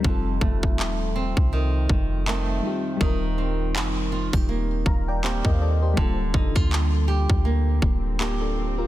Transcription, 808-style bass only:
X:1
M:4/4
L:1/16
Q:"Swing 16ths" 1/4=81
K:Fmix
V:1 name="808-style bass" clef=bass
F,,,2 F,,,2 E,,,3 C,,3 F,,,4 z2 | E,,,4 F,,,3 E,,,3 E,,,3 E,,3 | D,,,2 F,,, D,,4 D,,3 D,,,6 |]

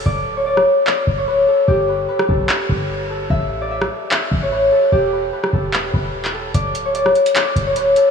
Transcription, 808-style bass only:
X:1
M:4/4
L:1/8
Q:1/4=148
K:Bm
V:1 name="808-style bass" clef=bass
D,,,3 z2 D,,,2 z | G,,,2 z B,,, z G,,,3 | A,,,3 z2 A,,,2 z | E,,,2 z E,,,2 E,,,3 |
D,,,3 z2 D,,,2 z |]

